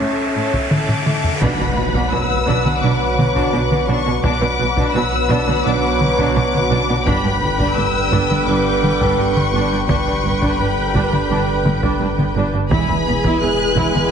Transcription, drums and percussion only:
0.53 taiko medium
0.71 taiko mid medium
0.88 taiko low-mid medium
1.06 taiko mid medium
1.24 taiko low medium
1.42 taiko medium
1.94 taiko medium
2.47 taiko medium
2.65 taiko mid soft
3.18 taiko mid medium
3.36 taiko medium
3.71 taiko mid soft
4.24 taiko loud
4.77 taiko medium
5.30 taiko medium
5.48 taiko mid soft
6.01 taiko mid medium
6.19 taiko medium
6.54 taiko mid soft
7.07 taiko medium
7.60 taiko medium
8.13 taiko medium
8.30 taiko mid soft
8.83 taiko mid medium
9.01 taiko medium
9.36 taiko mid medium
9.89 taiko loud
10.42 taiko medium
10.95 taiko medium
11.13 taiko mid soft
11.65 taiko mid medium
11.83 taiko medium
12.18 taiko mid soft
12.71 taiko loud
13.24 taiko medium
13.77 taiko medium
13.95 taiko mid medium

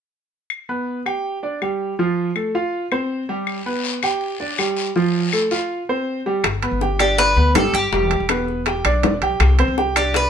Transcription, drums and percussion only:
0.50 claves medium
1.06 claves medium
1.62 claves medium
2.36 claves medium
2.92 claves medium
3.47 long guiro medium
3.47 claves medium
3.84 short guiro medium
4.03 short guiro medium
4.03 claves medium
4.21 long guiro medium
4.58 short guiro medium
4.58 claves medium
4.77 short guiro medium
4.96 long guiro medium
5.33 short guiro medium
5.33 claves medium
5.51 short guiro medium
6.44 high bongo medium
6.44 high timbale medium
6.44 claves medium
6.62 high bongo soft
6.62 high timbale medium
6.81 high bongo medium
6.99 high bongo soft
6.99 high timbale medium
6.99 claves medium
7.18 high bongo medium
7.18 high timbale medium
7.37 high bongo soft
7.55 high bongo soft
7.55 low bongo medium
7.55 high timbale medium
7.55 low timbale medium
7.55 claves medium
7.74 high timbale medium
7.93 high bongo medium
8.11 high bongo soft
8.11 high timbale medium
8.29 high bongo medium
8.29 high timbale medium
8.29 claves medium
8.48 high bongo soft
8.66 high bongo medium
8.66 high timbale medium
8.85 high bongo soft
8.85 high timbale medium
8.85 claves medium
9.03 high bongo soft
9.03 low bongo medium
9.03 high timbale medium
9.03 low timbale medium
9.22 high timbale medium
9.40 high bongo medium
9.40 high timbale medium
9.40 claves medium
9.59 high bongo soft
9.59 high timbale medium
9.78 high bongo soft
9.96 high bongo soft
9.96 high timbale medium
9.96 claves medium
10.14 high bongo medium
10.14 high timbale medium

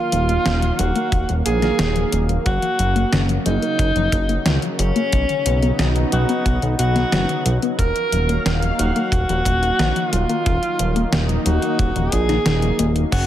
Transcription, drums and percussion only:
0.12 closed hi-hat medium
0.29 closed hi-hat soft
0.46 snare loud
0.46 closed hi-hat medium
0.62 closed hi-hat soft
0.79 closed hi-hat medium
0.96 closed hi-hat soft
1.12 kick loud
1.12 closed hi-hat medium
1.29 closed hi-hat soft
1.46 closed hi-hat medium
1.62 snare soft
1.62 closed hi-hat soft
1.79 snare loud
1.79 closed hi-hat medium
1.96 closed hi-hat soft
2.12 closed hi-hat medium
2.29 closed hi-hat soft
2.46 kick loud
2.46 closed hi-hat medium
2.62 closed hi-hat soft
2.79 closed hi-hat medium
2.96 closed hi-hat soft
3.13 snare loud
3.13 closed hi-hat medium
3.29 closed hi-hat soft
3.46 closed hi-hat medium
3.62 closed hi-hat soft
3.79 kick loud
3.79 closed hi-hat medium
3.96 closed hi-hat soft
4.12 kick medium
4.12 closed hi-hat medium
4.29 closed hi-hat soft
4.46 snare loud
4.46 closed hi-hat medium
4.62 closed hi-hat soft
4.79 closed hi-hat medium
4.96 closed hi-hat soft
5.12 kick loud
5.12 closed hi-hat medium
5.29 closed hi-hat soft
5.46 closed hi-hat medium
5.62 closed hi-hat soft
5.79 snare loud
5.79 closed hi-hat medium
5.96 closed hi-hat soft
6.12 closed hi-hat medium
6.29 closed hi-hat soft
6.46 kick loud
6.46 closed hi-hat medium
6.62 closed hi-hat soft
6.79 closed hi-hat medium
6.96 snare soft
6.96 closed hi-hat soft
7.12 snare loud
7.12 closed hi-hat medium
7.29 closed hi-hat soft
7.46 closed hi-hat medium
7.62 closed hi-hat soft
7.79 kick loud
7.79 closed hi-hat medium
7.96 closed hi-hat soft
8.12 closed hi-hat medium
8.29 closed hi-hat soft
8.46 snare loud
8.46 closed hi-hat medium
8.62 closed hi-hat soft
8.79 closed hi-hat medium
8.96 closed hi-hat soft
9.12 kick loud
9.12 closed hi-hat medium
9.29 closed hi-hat soft
9.45 kick medium
9.45 closed hi-hat medium
9.63 closed hi-hat soft
9.79 snare loud
9.79 closed hi-hat medium
9.96 closed hi-hat soft
10.13 closed hi-hat medium
10.29 closed hi-hat soft
10.46 kick loud
10.46 closed hi-hat medium
10.63 closed hi-hat soft
10.79 closed hi-hat medium
10.96 closed hi-hat soft
11.13 snare loud
11.13 closed hi-hat medium
11.29 closed hi-hat soft
11.46 closed hi-hat medium
11.62 closed hi-hat soft
11.79 kick loud
11.79 closed hi-hat medium
11.96 closed hi-hat soft
12.12 kick soft
12.12 closed hi-hat medium
12.29 snare soft
12.29 closed hi-hat soft
12.46 snare loud
12.46 closed hi-hat medium
12.62 closed hi-hat soft
12.79 closed hi-hat medium
12.96 closed hi-hat soft
13.12 kick loud
13.12 closed hi-hat medium
13.12 crash medium

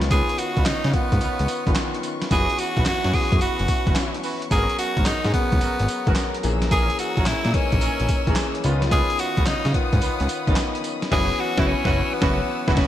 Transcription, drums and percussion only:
0.02 snare medium
0.02 closed hi-hat medium
0.11 kick loud
0.11 closed hi-hat medium
0.11 tambourine medium
0.29 closed hi-hat medium
0.38 closed hi-hat medium
0.38 tambourine medium
0.57 kick medium
0.57 closed hi-hat soft
0.66 snare loud
0.66 clap medium
0.66 closed hi-hat medium
0.66 tambourine loud
0.84 snare medium
0.84 closed hi-hat soft
0.93 kick medium
0.93 closed hi-hat medium
1.12 kick medium
1.12 closed hi-hat medium
1.21 closed hi-hat medium
1.21 tambourine medium
1.39 closed hi-hat medium
1.48 closed hi-hat medium
1.48 tambourine medium
1.67 kick loud
1.67 closed hi-hat soft
1.75 snare loud
1.75 clap medium
1.75 closed hi-hat medium
1.75 tambourine medium
1.94 closed hi-hat medium
2.03 closed hi-hat medium
2.03 tambourine medium
2.22 snare medium
2.22 closed hi-hat medium
2.31 kick loud
2.31 closed hi-hat medium
2.31 tambourine medium
2.50 closed hi-hat medium
2.58 closed hi-hat medium
2.58 tambourine medium
2.77 kick medium
2.77 closed hi-hat soft
2.85 snare loud
2.85 clap medium
2.85 closed hi-hat medium
2.85 tambourine medium
3.04 snare medium
3.04 closed hi-hat soft
3.14 kick medium
3.14 open hi-hat medium
3.32 kick loud
3.32 closed hi-hat medium
3.41 closed hi-hat medium
3.41 tambourine medium
3.59 closed hi-hat medium
3.68 kick medium
3.68 closed hi-hat medium
3.68 tambourine medium
3.87 kick loud
3.87 closed hi-hat soft
3.95 snare loud
3.95 clap medium
3.95 closed hi-hat medium
3.95 tambourine medium
4.14 closed hi-hat medium
4.23 open hi-hat medium
4.23 tambourine medium
4.42 closed hi-hat medium
4.51 kick loud
4.51 closed hi-hat medium
4.51 tambourine medium
4.69 closed hi-hat medium
4.79 closed hi-hat medium
4.79 tambourine medium
4.97 kick medium
4.97 closed hi-hat medium
5.06 snare loud
5.06 clap loud
5.06 closed hi-hat medium
5.06 tambourine loud
5.24 snare medium
5.24 closed hi-hat soft
5.34 kick medium
5.34 closed hi-hat medium
5.52 kick loud
5.52 closed hi-hat soft
5.61 closed hi-hat medium
5.61 tambourine medium
5.79 closed hi-hat medium
5.88 closed hi-hat medium
5.88 tambourine medium
6.07 kick loud
6.07 closed hi-hat soft
6.15 snare loud
6.15 clap medium
6.15 closed hi-hat medium
6.15 tambourine loud
6.34 closed hi-hat medium
6.43 closed hi-hat medium
6.43 tambourine medium
6.62 snare medium
6.62 closed hi-hat medium
6.71 kick loud
6.71 closed hi-hat medium
6.71 tambourine medium
6.90 closed hi-hat medium
6.99 closed hi-hat medium
6.99 tambourine medium
7.17 kick medium
7.17 closed hi-hat soft
7.26 snare loud
7.26 clap medium
7.26 closed hi-hat medium
7.26 tambourine medium
7.45 snare medium
7.45 closed hi-hat soft
7.54 kick medium
7.54 closed hi-hat medium
7.72 kick medium
7.72 closed hi-hat medium
7.81 closed hi-hat medium
7.81 tambourine medium
8.00 closed hi-hat medium
8.09 kick medium
8.09 closed hi-hat medium
8.09 tambourine medium
8.27 kick loud
8.27 closed hi-hat soft
8.36 snare loud
8.36 clap loud
8.36 closed hi-hat medium
8.36 tambourine medium
8.55 closed hi-hat medium
8.64 closed hi-hat medium
8.64 tambourine medium
8.82 snare medium
8.82 closed hi-hat medium
8.91 kick loud
8.91 closed hi-hat medium
8.91 tambourine medium
9.10 closed hi-hat medium
9.19 closed hi-hat medium
9.19 tambourine medium
9.37 kick medium
9.37 closed hi-hat soft
9.46 snare loud
9.46 clap medium
9.46 closed hi-hat medium
9.46 tambourine medium
9.65 snare medium
9.65 closed hi-hat soft
9.74 kick medium
9.74 closed hi-hat medium
9.93 kick loud
9.93 closed hi-hat medium
10.02 closed hi-hat medium
10.02 tambourine medium
10.20 closed hi-hat medium
10.29 closed hi-hat medium
10.29 tambourine medium
10.47 kick loud
10.47 closed hi-hat soft
10.56 snare loud
10.56 clap loud
10.56 closed hi-hat medium
10.56 tambourine medium
10.75 closed hi-hat medium
10.84 closed hi-hat medium
10.84 tambourine medium
11.02 snare medium
11.02 closed hi-hat medium
11.12 kick loud
11.12 snare loud
11.12 crash medium
11.58 kick loud
11.58 snare loud
11.85 kick loud
11.85 snare loud
12.22 kick loud
12.22 snare loud
12.68 kick loud
12.68 snare loud
12.77 kick loud
12.77 snare loud
12.77 crash medium

